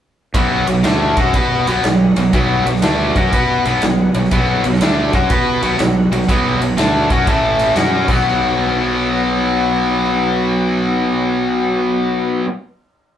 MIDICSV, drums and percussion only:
0, 0, Header, 1, 2, 480
1, 0, Start_track
1, 0, Tempo, 495868
1, 329, Time_signature, 4, 2, 24, 8
1, 5609, Tempo, 487409
1, 12878, End_track
2, 0, Start_track
2, 0, Title_t, "Drums"
2, 332, Note_on_c, 9, 36, 91
2, 332, Note_on_c, 9, 51, 88
2, 429, Note_off_c, 9, 36, 0
2, 429, Note_off_c, 9, 51, 0
2, 652, Note_on_c, 9, 51, 70
2, 749, Note_off_c, 9, 51, 0
2, 811, Note_on_c, 9, 51, 87
2, 825, Note_on_c, 9, 38, 100
2, 908, Note_off_c, 9, 51, 0
2, 921, Note_off_c, 9, 38, 0
2, 1129, Note_on_c, 9, 51, 74
2, 1132, Note_on_c, 9, 36, 99
2, 1226, Note_off_c, 9, 51, 0
2, 1229, Note_off_c, 9, 36, 0
2, 1294, Note_on_c, 9, 51, 88
2, 1295, Note_on_c, 9, 36, 94
2, 1391, Note_off_c, 9, 51, 0
2, 1392, Note_off_c, 9, 36, 0
2, 1618, Note_on_c, 9, 51, 70
2, 1715, Note_off_c, 9, 51, 0
2, 1778, Note_on_c, 9, 51, 82
2, 1792, Note_on_c, 9, 38, 108
2, 1875, Note_off_c, 9, 51, 0
2, 1889, Note_off_c, 9, 38, 0
2, 2094, Note_on_c, 9, 51, 74
2, 2190, Note_off_c, 9, 51, 0
2, 2257, Note_on_c, 9, 51, 81
2, 2259, Note_on_c, 9, 36, 102
2, 2354, Note_off_c, 9, 51, 0
2, 2355, Note_off_c, 9, 36, 0
2, 2580, Note_on_c, 9, 51, 68
2, 2669, Note_on_c, 9, 38, 31
2, 2677, Note_off_c, 9, 51, 0
2, 2731, Note_on_c, 9, 51, 86
2, 2745, Note_off_c, 9, 38, 0
2, 2745, Note_on_c, 9, 38, 100
2, 2828, Note_off_c, 9, 51, 0
2, 2842, Note_off_c, 9, 38, 0
2, 3055, Note_on_c, 9, 51, 67
2, 3057, Note_on_c, 9, 36, 93
2, 3152, Note_off_c, 9, 51, 0
2, 3153, Note_off_c, 9, 36, 0
2, 3220, Note_on_c, 9, 36, 92
2, 3220, Note_on_c, 9, 51, 86
2, 3316, Note_off_c, 9, 36, 0
2, 3317, Note_off_c, 9, 51, 0
2, 3537, Note_on_c, 9, 51, 61
2, 3634, Note_off_c, 9, 51, 0
2, 3694, Note_on_c, 9, 51, 87
2, 3707, Note_on_c, 9, 38, 106
2, 3790, Note_off_c, 9, 51, 0
2, 3804, Note_off_c, 9, 38, 0
2, 4011, Note_on_c, 9, 51, 66
2, 4108, Note_off_c, 9, 51, 0
2, 4110, Note_on_c, 9, 38, 32
2, 4174, Note_on_c, 9, 51, 80
2, 4178, Note_on_c, 9, 36, 97
2, 4207, Note_off_c, 9, 38, 0
2, 4271, Note_off_c, 9, 51, 0
2, 4275, Note_off_c, 9, 36, 0
2, 4491, Note_on_c, 9, 51, 66
2, 4587, Note_off_c, 9, 51, 0
2, 4589, Note_on_c, 9, 38, 31
2, 4654, Note_on_c, 9, 51, 90
2, 4667, Note_off_c, 9, 38, 0
2, 4667, Note_on_c, 9, 38, 104
2, 4751, Note_off_c, 9, 51, 0
2, 4764, Note_off_c, 9, 38, 0
2, 4967, Note_on_c, 9, 51, 66
2, 4971, Note_on_c, 9, 36, 94
2, 5064, Note_off_c, 9, 51, 0
2, 5068, Note_off_c, 9, 36, 0
2, 5128, Note_on_c, 9, 51, 91
2, 5133, Note_on_c, 9, 36, 105
2, 5224, Note_off_c, 9, 51, 0
2, 5229, Note_off_c, 9, 36, 0
2, 5445, Note_on_c, 9, 51, 72
2, 5542, Note_off_c, 9, 51, 0
2, 5605, Note_on_c, 9, 51, 89
2, 5618, Note_on_c, 9, 38, 96
2, 5703, Note_off_c, 9, 51, 0
2, 5717, Note_off_c, 9, 38, 0
2, 5934, Note_on_c, 9, 51, 71
2, 6027, Note_on_c, 9, 38, 33
2, 6032, Note_off_c, 9, 51, 0
2, 6094, Note_on_c, 9, 36, 99
2, 6097, Note_on_c, 9, 51, 90
2, 6126, Note_off_c, 9, 38, 0
2, 6192, Note_off_c, 9, 36, 0
2, 6195, Note_off_c, 9, 51, 0
2, 6418, Note_on_c, 9, 51, 67
2, 6517, Note_off_c, 9, 51, 0
2, 6579, Note_on_c, 9, 51, 91
2, 6593, Note_on_c, 9, 38, 100
2, 6677, Note_off_c, 9, 51, 0
2, 6691, Note_off_c, 9, 38, 0
2, 6897, Note_on_c, 9, 36, 104
2, 6897, Note_on_c, 9, 51, 67
2, 6995, Note_off_c, 9, 51, 0
2, 6996, Note_off_c, 9, 36, 0
2, 7062, Note_on_c, 9, 36, 101
2, 7063, Note_on_c, 9, 51, 85
2, 7160, Note_off_c, 9, 36, 0
2, 7161, Note_off_c, 9, 51, 0
2, 7380, Note_on_c, 9, 51, 65
2, 7479, Note_off_c, 9, 51, 0
2, 7543, Note_on_c, 9, 51, 77
2, 7557, Note_on_c, 9, 38, 97
2, 7642, Note_off_c, 9, 51, 0
2, 7655, Note_off_c, 9, 38, 0
2, 7860, Note_on_c, 9, 49, 82
2, 7862, Note_on_c, 9, 36, 100
2, 7959, Note_off_c, 9, 49, 0
2, 7960, Note_off_c, 9, 36, 0
2, 12878, End_track
0, 0, End_of_file